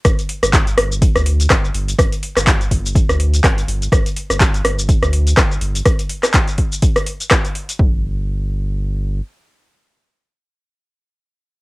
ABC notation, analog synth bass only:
X:1
M:4/4
L:1/16
Q:"Swing 16ths" 1/4=124
K:Cdor
V:1 name="Analog synth bass" clef=bass
G,,, z2 G,,,3 G,,,3 D,,3 G,,,2 G,,,2 | G,,, z2 G,,,3 G,,,3 D,,3 G,,,2 G,,,2 | G,,, z2 G,,,3 G,,,3 D,,3 G,,,2 G,,,2 | z16 |
G,,,12 z4 | z16 |]